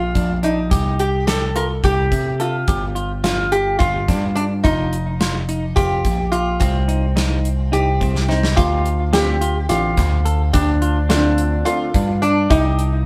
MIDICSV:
0, 0, Header, 1, 6, 480
1, 0, Start_track
1, 0, Tempo, 561798
1, 607, Time_signature, 7, 3, 24, 8
1, 11156, End_track
2, 0, Start_track
2, 0, Title_t, "Clean electric guitar"
2, 0, Program_c, 0, 27
2, 128, Note_on_c, 0, 62, 55
2, 262, Note_off_c, 0, 62, 0
2, 368, Note_on_c, 0, 62, 61
2, 502, Note_off_c, 0, 62, 0
2, 609, Note_on_c, 0, 67, 75
2, 877, Note_off_c, 0, 67, 0
2, 1089, Note_on_c, 0, 67, 69
2, 1223, Note_off_c, 0, 67, 0
2, 1329, Note_on_c, 0, 65, 74
2, 1463, Note_off_c, 0, 65, 0
2, 1570, Note_on_c, 0, 67, 66
2, 1838, Note_off_c, 0, 67, 0
2, 2049, Note_on_c, 0, 69, 64
2, 2183, Note_off_c, 0, 69, 0
2, 2289, Note_on_c, 0, 67, 74
2, 2423, Note_off_c, 0, 67, 0
2, 2523, Note_on_c, 0, 65, 66
2, 2658, Note_off_c, 0, 65, 0
2, 2767, Note_on_c, 0, 65, 68
2, 3035, Note_off_c, 0, 65, 0
2, 3251, Note_on_c, 0, 65, 71
2, 3384, Note_off_c, 0, 65, 0
2, 3490, Note_on_c, 0, 62, 60
2, 3624, Note_off_c, 0, 62, 0
2, 3728, Note_on_c, 0, 62, 67
2, 3862, Note_off_c, 0, 62, 0
2, 3971, Note_on_c, 0, 65, 71
2, 4239, Note_off_c, 0, 65, 0
2, 4449, Note_on_c, 0, 65, 65
2, 4583, Note_off_c, 0, 65, 0
2, 4689, Note_on_c, 0, 63, 70
2, 4823, Note_off_c, 0, 63, 0
2, 4926, Note_on_c, 0, 65, 73
2, 5195, Note_off_c, 0, 65, 0
2, 5402, Note_on_c, 0, 67, 63
2, 5538, Note_off_c, 0, 67, 0
2, 5642, Note_on_c, 0, 65, 71
2, 5778, Note_off_c, 0, 65, 0
2, 5880, Note_on_c, 0, 63, 63
2, 6017, Note_off_c, 0, 63, 0
2, 6119, Note_on_c, 0, 63, 74
2, 6390, Note_off_c, 0, 63, 0
2, 6597, Note_on_c, 0, 63, 69
2, 6734, Note_off_c, 0, 63, 0
2, 6841, Note_on_c, 0, 60, 59
2, 6977, Note_off_c, 0, 60, 0
2, 7082, Note_on_c, 0, 60, 64
2, 7218, Note_off_c, 0, 60, 0
2, 7318, Note_on_c, 0, 67, 74
2, 7589, Note_off_c, 0, 67, 0
2, 7799, Note_on_c, 0, 67, 69
2, 7936, Note_off_c, 0, 67, 0
2, 8042, Note_on_c, 0, 65, 71
2, 8178, Note_off_c, 0, 65, 0
2, 8280, Note_on_c, 0, 67, 74
2, 8551, Note_off_c, 0, 67, 0
2, 8761, Note_on_c, 0, 69, 64
2, 8897, Note_off_c, 0, 69, 0
2, 9001, Note_on_c, 0, 67, 74
2, 9137, Note_off_c, 0, 67, 0
2, 9243, Note_on_c, 0, 65, 71
2, 9378, Note_off_c, 0, 65, 0
2, 9478, Note_on_c, 0, 65, 76
2, 9749, Note_off_c, 0, 65, 0
2, 9965, Note_on_c, 0, 65, 80
2, 10099, Note_off_c, 0, 65, 0
2, 10209, Note_on_c, 0, 62, 69
2, 10342, Note_off_c, 0, 62, 0
2, 10443, Note_on_c, 0, 62, 72
2, 10578, Note_off_c, 0, 62, 0
2, 10681, Note_on_c, 0, 67, 87
2, 10951, Note_off_c, 0, 67, 0
2, 11156, End_track
3, 0, Start_track
3, 0, Title_t, "Resonator guitar played with a steel bar"
3, 0, Program_c, 1, 25
3, 0, Note_on_c, 1, 65, 75
3, 337, Note_off_c, 1, 65, 0
3, 376, Note_on_c, 1, 63, 73
3, 851, Note_on_c, 1, 67, 70
3, 866, Note_off_c, 1, 63, 0
3, 1073, Note_off_c, 1, 67, 0
3, 1086, Note_on_c, 1, 69, 82
3, 1310, Note_off_c, 1, 69, 0
3, 1334, Note_on_c, 1, 70, 82
3, 1398, Note_off_c, 1, 70, 0
3, 1575, Note_on_c, 1, 67, 81
3, 2055, Note_off_c, 1, 67, 0
3, 2058, Note_on_c, 1, 65, 67
3, 2499, Note_off_c, 1, 65, 0
3, 2766, Note_on_c, 1, 65, 81
3, 2990, Note_off_c, 1, 65, 0
3, 3007, Note_on_c, 1, 67, 86
3, 3232, Note_off_c, 1, 67, 0
3, 3236, Note_on_c, 1, 65, 83
3, 3721, Note_on_c, 1, 62, 77
3, 3736, Note_off_c, 1, 65, 0
3, 3786, Note_off_c, 1, 62, 0
3, 3961, Note_on_c, 1, 63, 85
3, 4920, Note_on_c, 1, 67, 78
3, 4953, Note_off_c, 1, 63, 0
3, 5393, Note_off_c, 1, 67, 0
3, 5397, Note_on_c, 1, 65, 74
3, 5636, Note_on_c, 1, 60, 67
3, 5649, Note_off_c, 1, 65, 0
3, 6603, Note_on_c, 1, 67, 73
3, 7048, Note_off_c, 1, 60, 0
3, 7077, Note_on_c, 1, 63, 67
3, 7100, Note_off_c, 1, 67, 0
3, 7317, Note_off_c, 1, 63, 0
3, 7320, Note_on_c, 1, 65, 79
3, 7770, Note_off_c, 1, 65, 0
3, 7806, Note_on_c, 1, 67, 80
3, 8277, Note_off_c, 1, 67, 0
3, 8280, Note_on_c, 1, 65, 70
3, 8999, Note_on_c, 1, 62, 74
3, 9025, Note_off_c, 1, 65, 0
3, 9474, Note_off_c, 1, 62, 0
3, 9484, Note_on_c, 1, 62, 78
3, 9956, Note_on_c, 1, 65, 72
3, 9980, Note_off_c, 1, 62, 0
3, 10440, Note_on_c, 1, 62, 77
3, 10455, Note_off_c, 1, 65, 0
3, 10683, Note_on_c, 1, 63, 85
3, 10690, Note_off_c, 1, 62, 0
3, 11156, Note_off_c, 1, 63, 0
3, 11156, End_track
4, 0, Start_track
4, 0, Title_t, "Grand piano"
4, 0, Program_c, 2, 0
4, 7805, Note_on_c, 2, 50, 61
4, 7810, Note_on_c, 2, 57, 56
4, 7812, Note_on_c, 2, 60, 58
4, 7818, Note_on_c, 2, 65, 63
4, 7974, Note_off_c, 2, 50, 0
4, 7977, Note_off_c, 2, 57, 0
4, 7978, Note_off_c, 2, 60, 0
4, 7981, Note_off_c, 2, 65, 0
4, 8285, Note_on_c, 2, 50, 54
4, 8287, Note_on_c, 2, 57, 50
4, 8292, Note_on_c, 2, 60, 47
4, 8296, Note_on_c, 2, 67, 57
4, 8454, Note_off_c, 2, 50, 0
4, 8455, Note_off_c, 2, 57, 0
4, 8458, Note_off_c, 2, 60, 0
4, 8460, Note_off_c, 2, 67, 0
4, 9485, Note_on_c, 2, 50, 67
4, 9489, Note_on_c, 2, 57, 58
4, 9492, Note_on_c, 2, 60, 59
4, 9496, Note_on_c, 2, 65, 72
4, 9944, Note_off_c, 2, 50, 0
4, 9952, Note_off_c, 2, 57, 0
4, 9952, Note_off_c, 2, 60, 0
4, 9957, Note_on_c, 2, 50, 58
4, 9965, Note_on_c, 2, 57, 49
4, 9965, Note_on_c, 2, 60, 57
4, 9972, Note_on_c, 2, 62, 64
4, 10129, Note_off_c, 2, 50, 0
4, 10133, Note_off_c, 2, 60, 0
4, 10134, Note_off_c, 2, 57, 0
4, 10137, Note_off_c, 2, 62, 0
4, 10163, Note_off_c, 2, 65, 0
4, 11156, End_track
5, 0, Start_track
5, 0, Title_t, "Picked electric bass"
5, 0, Program_c, 3, 34
5, 0, Note_on_c, 3, 34, 78
5, 109, Note_off_c, 3, 34, 0
5, 130, Note_on_c, 3, 34, 72
5, 610, Note_off_c, 3, 34, 0
5, 610, Note_on_c, 3, 36, 90
5, 1534, Note_off_c, 3, 36, 0
5, 1570, Note_on_c, 3, 36, 80
5, 1786, Note_off_c, 3, 36, 0
5, 1810, Note_on_c, 3, 48, 70
5, 2254, Note_off_c, 3, 48, 0
5, 2291, Note_on_c, 3, 31, 86
5, 3215, Note_off_c, 3, 31, 0
5, 3250, Note_on_c, 3, 31, 80
5, 3490, Note_on_c, 3, 43, 73
5, 3503, Note_off_c, 3, 31, 0
5, 3968, Note_on_c, 3, 29, 94
5, 3981, Note_off_c, 3, 43, 0
5, 4893, Note_off_c, 3, 29, 0
5, 4927, Note_on_c, 3, 29, 77
5, 5144, Note_off_c, 3, 29, 0
5, 5169, Note_on_c, 3, 34, 70
5, 5614, Note_off_c, 3, 34, 0
5, 5647, Note_on_c, 3, 36, 88
5, 6573, Note_off_c, 3, 36, 0
5, 6603, Note_on_c, 3, 36, 72
5, 6822, Note_off_c, 3, 36, 0
5, 6848, Note_on_c, 3, 36, 67
5, 7294, Note_off_c, 3, 36, 0
5, 7328, Note_on_c, 3, 38, 82
5, 8253, Note_off_c, 3, 38, 0
5, 8287, Note_on_c, 3, 33, 84
5, 8504, Note_off_c, 3, 33, 0
5, 8523, Note_on_c, 3, 38, 92
5, 8971, Note_off_c, 3, 38, 0
5, 9007, Note_on_c, 3, 38, 85
5, 9932, Note_off_c, 3, 38, 0
5, 10206, Note_on_c, 3, 43, 76
5, 10652, Note_off_c, 3, 43, 0
5, 10684, Note_on_c, 3, 36, 83
5, 11156, Note_off_c, 3, 36, 0
5, 11156, End_track
6, 0, Start_track
6, 0, Title_t, "Drums"
6, 130, Note_on_c, 9, 42, 54
6, 131, Note_on_c, 9, 36, 63
6, 216, Note_off_c, 9, 42, 0
6, 217, Note_off_c, 9, 36, 0
6, 369, Note_on_c, 9, 42, 55
6, 454, Note_off_c, 9, 42, 0
6, 609, Note_on_c, 9, 42, 72
6, 610, Note_on_c, 9, 36, 83
6, 695, Note_off_c, 9, 42, 0
6, 696, Note_off_c, 9, 36, 0
6, 849, Note_on_c, 9, 42, 51
6, 935, Note_off_c, 9, 42, 0
6, 1092, Note_on_c, 9, 38, 96
6, 1092, Note_on_c, 9, 42, 74
6, 1177, Note_off_c, 9, 38, 0
6, 1177, Note_off_c, 9, 42, 0
6, 1330, Note_on_c, 9, 42, 55
6, 1416, Note_off_c, 9, 42, 0
6, 1569, Note_on_c, 9, 36, 89
6, 1571, Note_on_c, 9, 42, 61
6, 1655, Note_off_c, 9, 36, 0
6, 1656, Note_off_c, 9, 42, 0
6, 1809, Note_on_c, 9, 36, 62
6, 1811, Note_on_c, 9, 42, 55
6, 1895, Note_off_c, 9, 36, 0
6, 1897, Note_off_c, 9, 42, 0
6, 2049, Note_on_c, 9, 42, 52
6, 2135, Note_off_c, 9, 42, 0
6, 2287, Note_on_c, 9, 42, 66
6, 2289, Note_on_c, 9, 36, 92
6, 2372, Note_off_c, 9, 42, 0
6, 2374, Note_off_c, 9, 36, 0
6, 2528, Note_on_c, 9, 42, 46
6, 2614, Note_off_c, 9, 42, 0
6, 2770, Note_on_c, 9, 38, 91
6, 2770, Note_on_c, 9, 42, 70
6, 2855, Note_off_c, 9, 38, 0
6, 2855, Note_off_c, 9, 42, 0
6, 3009, Note_on_c, 9, 42, 50
6, 3094, Note_off_c, 9, 42, 0
6, 3249, Note_on_c, 9, 36, 93
6, 3249, Note_on_c, 9, 42, 62
6, 3334, Note_off_c, 9, 36, 0
6, 3334, Note_off_c, 9, 42, 0
6, 3490, Note_on_c, 9, 36, 66
6, 3491, Note_on_c, 9, 38, 27
6, 3491, Note_on_c, 9, 42, 55
6, 3575, Note_off_c, 9, 36, 0
6, 3576, Note_off_c, 9, 38, 0
6, 3576, Note_off_c, 9, 42, 0
6, 3730, Note_on_c, 9, 42, 55
6, 3816, Note_off_c, 9, 42, 0
6, 3970, Note_on_c, 9, 36, 86
6, 3970, Note_on_c, 9, 42, 66
6, 4055, Note_off_c, 9, 36, 0
6, 4056, Note_off_c, 9, 42, 0
6, 4210, Note_on_c, 9, 42, 53
6, 4295, Note_off_c, 9, 42, 0
6, 4449, Note_on_c, 9, 38, 96
6, 4449, Note_on_c, 9, 42, 74
6, 4534, Note_off_c, 9, 38, 0
6, 4534, Note_off_c, 9, 42, 0
6, 4688, Note_on_c, 9, 42, 57
6, 4774, Note_off_c, 9, 42, 0
6, 4928, Note_on_c, 9, 36, 90
6, 4929, Note_on_c, 9, 42, 65
6, 5013, Note_off_c, 9, 36, 0
6, 5014, Note_off_c, 9, 42, 0
6, 5166, Note_on_c, 9, 42, 58
6, 5167, Note_on_c, 9, 36, 67
6, 5252, Note_off_c, 9, 42, 0
6, 5253, Note_off_c, 9, 36, 0
6, 5406, Note_on_c, 9, 42, 58
6, 5491, Note_off_c, 9, 42, 0
6, 5644, Note_on_c, 9, 42, 69
6, 5645, Note_on_c, 9, 36, 91
6, 5729, Note_off_c, 9, 42, 0
6, 5730, Note_off_c, 9, 36, 0
6, 5884, Note_on_c, 9, 42, 48
6, 5969, Note_off_c, 9, 42, 0
6, 6124, Note_on_c, 9, 38, 97
6, 6124, Note_on_c, 9, 42, 73
6, 6210, Note_off_c, 9, 38, 0
6, 6210, Note_off_c, 9, 42, 0
6, 6367, Note_on_c, 9, 42, 51
6, 6452, Note_off_c, 9, 42, 0
6, 6607, Note_on_c, 9, 42, 61
6, 6692, Note_off_c, 9, 42, 0
6, 6845, Note_on_c, 9, 36, 66
6, 6846, Note_on_c, 9, 42, 50
6, 6930, Note_off_c, 9, 36, 0
6, 6931, Note_off_c, 9, 42, 0
6, 6967, Note_on_c, 9, 38, 47
6, 7053, Note_off_c, 9, 38, 0
6, 7089, Note_on_c, 9, 38, 52
6, 7174, Note_off_c, 9, 38, 0
6, 7207, Note_on_c, 9, 38, 82
6, 7292, Note_off_c, 9, 38, 0
6, 7325, Note_on_c, 9, 36, 91
6, 7327, Note_on_c, 9, 42, 71
6, 7411, Note_off_c, 9, 36, 0
6, 7413, Note_off_c, 9, 42, 0
6, 7566, Note_on_c, 9, 42, 53
6, 7651, Note_off_c, 9, 42, 0
6, 7804, Note_on_c, 9, 38, 101
6, 7804, Note_on_c, 9, 42, 76
6, 7890, Note_off_c, 9, 38, 0
6, 7890, Note_off_c, 9, 42, 0
6, 8045, Note_on_c, 9, 42, 65
6, 8130, Note_off_c, 9, 42, 0
6, 8282, Note_on_c, 9, 38, 31
6, 8282, Note_on_c, 9, 42, 77
6, 8368, Note_off_c, 9, 38, 0
6, 8368, Note_off_c, 9, 42, 0
6, 8521, Note_on_c, 9, 38, 30
6, 8521, Note_on_c, 9, 42, 64
6, 8523, Note_on_c, 9, 36, 70
6, 8606, Note_off_c, 9, 38, 0
6, 8606, Note_off_c, 9, 42, 0
6, 8609, Note_off_c, 9, 36, 0
6, 8763, Note_on_c, 9, 42, 59
6, 8848, Note_off_c, 9, 42, 0
6, 9002, Note_on_c, 9, 42, 76
6, 9004, Note_on_c, 9, 36, 91
6, 9088, Note_off_c, 9, 42, 0
6, 9090, Note_off_c, 9, 36, 0
6, 9244, Note_on_c, 9, 42, 56
6, 9329, Note_off_c, 9, 42, 0
6, 9482, Note_on_c, 9, 38, 101
6, 9482, Note_on_c, 9, 42, 79
6, 9568, Note_off_c, 9, 38, 0
6, 9568, Note_off_c, 9, 42, 0
6, 9723, Note_on_c, 9, 42, 54
6, 9808, Note_off_c, 9, 42, 0
6, 9965, Note_on_c, 9, 42, 71
6, 10050, Note_off_c, 9, 42, 0
6, 10205, Note_on_c, 9, 36, 74
6, 10206, Note_on_c, 9, 42, 53
6, 10290, Note_off_c, 9, 36, 0
6, 10291, Note_off_c, 9, 42, 0
6, 10447, Note_on_c, 9, 42, 51
6, 10533, Note_off_c, 9, 42, 0
6, 10685, Note_on_c, 9, 36, 97
6, 10685, Note_on_c, 9, 42, 72
6, 10770, Note_off_c, 9, 36, 0
6, 10771, Note_off_c, 9, 42, 0
6, 10925, Note_on_c, 9, 42, 51
6, 11011, Note_off_c, 9, 42, 0
6, 11156, End_track
0, 0, End_of_file